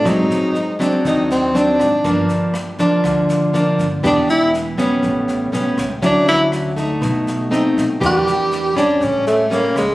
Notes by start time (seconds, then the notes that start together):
0.04 G#1 G#2 F#3 C4 D#4, kick, cross-stick, snare
0.30 G#1, snare
0.55 snare
0.79 F#3 C4 D4, kick, cross-stick, snare
1.05 D#2 D#3 D#4, kick, snare
1.30 C4, snare
1.54 F#3 C4 D4, snare
1.79 G#1, kick, cross-stick, snare
2.04 G1 G2 F3 A#3 D4, kick, snare
2.29 G1, snare
2.54 cross-stick, snare
2.79 F3 A#3 D4, kick, snare
3.04 D2 D3, kick, cross-stick, snare
3.29 snare
3.53 F3 A#3 D4, snare
3.79 G1, kick, snare
4.03 E1 E3 B3 D4 G4, kick, cross-stick, snare
4.27 E1 E4, snare
4.54 snare
4.78 G3 B3 C#4, kick, cross-stick, snare
5.02 A1 A2, kick, snare
5.28 snare
5.52 B1 G3 B3 C#4, snare
5.77 C#2, kick, cross-stick, snare
6.02 D2 D3 F#3 C#4 D4 E4, kick, snare
6.27 D2 E4, snare
6.52 cross-stick, snare
6.76 A3 D#4, kick, snare
7.01 B1 B2, kick, cross-stick, snare
7.27 snare
7.51 A3 C4 D#4, snare
7.77 B1, kick, snare
8.00 E2 E3 A#3 D4 G4, kick, cross-stick, snare
8.06 G4
8.26 E2, snare
8.51 snare
8.76 G3 C#4 D4, kick, cross-stick, snare
9.00 A1 A2 C#4, kick, snare
9.27 A3, snare
9.50 G3 A#3 C#4, snare
9.75 C#2 G#3, kick, cross-stick, snare